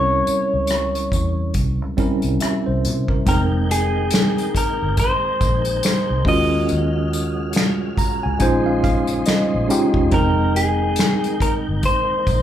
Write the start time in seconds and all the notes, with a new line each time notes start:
Already playing: C2 G3 C4 C#4 E4 A#4 C#5
0.27 muted fingered electric bass stroke, closed hi-hat
0.54 C#2
0.67 cross-stick, closed hi-hat
0.95 closed hi-hat
1.12 E2, kick, closed hi-hat
1.54 C2, kick, closed hi-hat
1.82 C#2
1.97 G3 C4 C#4 E4 A#4, kick, closed hi-hat
2.22 C2, closed hi-hat
2.40 E5, cross-stick, closed hi-hat
2.66 C2 C5
2.85 C3, closed hi-hat
3.08 A#4, kick
3.26 F1 D#3 G#3 A#3 C4 D#4 A#4 G5, kick, closed hi-hat
3.71 G#4, closed hi-hat
4.11 snare, closed hi-hat
4.15 finger snap
4.38 closed hi-hat
4.55 A#4, muted fingered electric bass stroke, kick, closed hi-hat
4.82 G1
4.97 C5, kick, closed hi-hat
5.41 A#1, kick, closed hi-hat
5.65 closed hi-hat
5.83 finger snap, snare, closed hi-hat
6.11 C2
6.25 D#2 C#3 F#3 G#3 C#4 F4 F#4 A#4 D#5 F5, kick, open hi-hat
6.69 D#2, closed hi-hat
7.13 closed hi-hat
7.53 snare, closed hi-hat
7.57 finger snap
7.97 A#5, muted fingered electric bass stroke, kick, closed hi-hat
8.23 C#2 G#5
8.39 A#1 C#3 G#3 C#4 D#4 F4 C5 G#5, kick, closed hi-hat
8.66 F5
8.84 F5, kick, closed hi-hat
9.07 closed hi-hat
9.26 D#5, finger snap, muted fingered electric bass stroke, snare, closed hi-hat
9.54 A#1
9.68 G#3 C#4 D#4 F4 G4, closed hi-hat
9.94 E1, kick
10.11 F1 D#3 G#3 A#3 C4 D#4 A#4 G5, kick, closed hi-hat
10.56 G#4, closed hi-hat
10.96 snare, closed hi-hat
11.00 finger snap
11.24 closed hi-hat
11.40 A#4, muted fingered electric bass stroke, kick, closed hi-hat
11.69 G1
11.83 C5, kick, closed hi-hat
12.27 A#1, kick, closed hi-hat